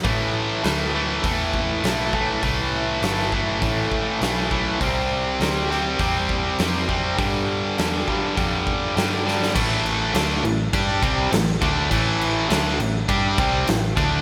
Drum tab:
CC |----------------|----------------|----------------|----------------|
HH |o---o---o---o---|o---o---o---o---|o---o---o---o---|o---o---o---o---|
SD |----o-------o---|----oo------o---|----o-o-----o---|----o-------o-oo|
BD |o-------o-o---o-|o-----o-o-o---o-|o-------o-o---o-|o-----o-o-o-----|

CC |x-x-x-x-x-x-x-x-|x-x-x-x-x-x-x-x-|
HH |----------------|----------------|
SD |----o-------o---|----o-------o---|
BD |o-------o-o---o-|o-------o-o---o-|